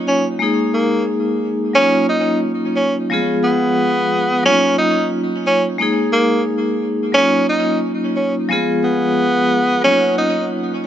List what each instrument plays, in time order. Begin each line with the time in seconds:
Already playing: vibraphone F#3 A#3 C#4 D#4 F4
0.08 tenor saxophone C#4
0.39 vibraphone G#3 A#3 D#4
0.43 vibraphone G#4
0.74 tenor saxophone A#3
1.73 vibraphone F#3 A#3 C#4 D#4, tenor saxophone C#4
1.77 vibraphone F4
2.09 tenor saxophone D#4
2.76 tenor saxophone C#4
3.09 vibraphone F3 G#3 B3 F4 G#4
3.44 tenor saxophone B3
4.43 vibraphone F#3 A#3 C#4 D#4, tenor saxophone C#4
4.47 vibraphone F4
4.78 tenor saxophone D#4
5.47 tenor saxophone C#4
5.78 vibraphone G#3 A#3 D#4
5.82 vibraphone G#4
6.13 tenor saxophone A#3
7.12 vibraphone F#3 A#3 C#4 D#4, tenor saxophone C#4
7.16 vibraphone F4
7.49 tenor saxophone D#4
8.16 tenor saxophone C#4
8.49 vibraphone F3 G#3 B3 F4
8.53 vibraphone G#4
8.84 tenor saxophone B3
9.82 vibraphone F#3 A#3 C#4 D#4, tenor saxophone C#4
9.86 vibraphone F4
10.18 tenor saxophone D#4